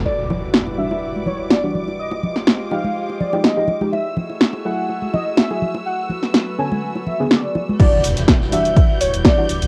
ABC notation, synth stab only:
X:1
M:4/4
L:1/16
Q:"Swing 16ths" 1/4=124
K:Edor
V:1 name="Synth stab"
z6 [E,G,DF] z6 [E,G,DF]2 z | z6 [=F,_A,_EG]4- [F,A,EG] [F,A,EG]2 [F,A,EG]2 [F,A,EG] | z6 [F,A,E^G] z6 [F,A,EG]2 z | z6 [D,B,CA]4- [D,B,CA] [C,D,B,^G]4- [C,D,B,G] |
[E,G,DF]6 [E,G,DF] z6 [E,G,DF]2 z |]